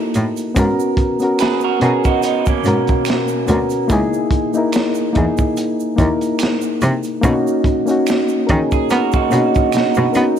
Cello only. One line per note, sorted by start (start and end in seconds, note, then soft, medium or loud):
0.15 0.23 A2 medium
0.57 0.65 G#2 medium
1.82 1.90 B2 medium
2.65 2.73 G#2 medium
3.49 3.57 D2 medium
3.90 3.98 C#2 loud
5.16 5.24 E2 medium
5.99 6.07 D#2 medium
6.82 6.90 C3 medium
7.24 7.32 B2 medium
8.50 8.58 D#3 medium
8.91 8.99 B3 medium
9.32 9.40 B2 medium
9.74 9.81 B2 soft
9.97 10.05 B2 medium
10.15 10.23 B3 loud